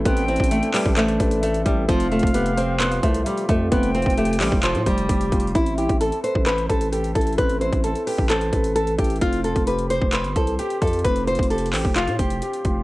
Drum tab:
HH |x-----x-----x---x---x---x-----x-----o-----------x-----x-----x-----x-----x-----x-----x-----------|x-----x-----x---x---x---x-----x-----x-----------x-----x-----x-----x-----x-----x-----x-----------|x-----x-----x---x---x---x---x---x---o-----------x-----x-----x-----x-----x-----x-----x---x---x---|x-----x-----x-----x-----x-----x-----x-----------x-----x-----x-----x-----x-----x-----x--x--x--x--|
CP |------------------------------------x-----------x-----------------------------------------------|------------------------------------------------x-----------------------------------------------|------------------------------------x-----------x-----------------------------------------------|------------------------------------------------x-----------------------------------------------|
BD |o-----------------o-----------------------o-----------------o-----------------------o-----------|o-----------------o-----------------------------------------o-----------------------o-----------|o-----------------o-----------------------o-----------------o-----------o-----------o-----------|o-----------------o-----------------------o-----------------o-----------------------o-----------|

HH |x-----x-----x-----x-----x-----x-----o-----------x-----x-----x-----x-----x-----x-----x--x--x--x--|x-----x-----x-----x-----x-----x-----x-----------x-----x-----x-----x-----x-----x-----x--x--x--x--|x-----x-----x---x---x---x---x---x---o-----------x-----x-----x-----x-----x-----x-----x-----------|
CP |------------------------------------------------x-----------------------------------------------|------------------------------------------------x-----------------------------------------------|------------------------------------x-----------x-----------------------------------------------|
BD |o-----------------o-----------------------o-----------------o-----------------------o-----------|o-----------------o-----------------------o-----------------o-----------------------o-----------|o-----------------o-----------------------o-----------------o-----------------------o-----------|